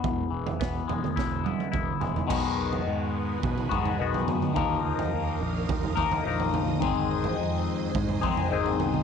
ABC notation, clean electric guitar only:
X:1
M:4/4
L:1/8
Q:1/4=106
K:none
V:1 name="Clean electric guitar"
E,, E, B, ^G, E B, E G, | [B,,^D,^G,B,^F]4- [B,,D,G,B,F] [B,,D,G,B,F] [B,,D,G,B,F]2 | [_E,F,_B,_E_B]4- [E,F,B,EB] [E,F,B,EB] [E,F,B,EB]2 | [_A,,_E,_A,C_E_A]4- [A,,E,A,CEA] [A,,E,A,CEA] [A,,E,A,CEA]2 |]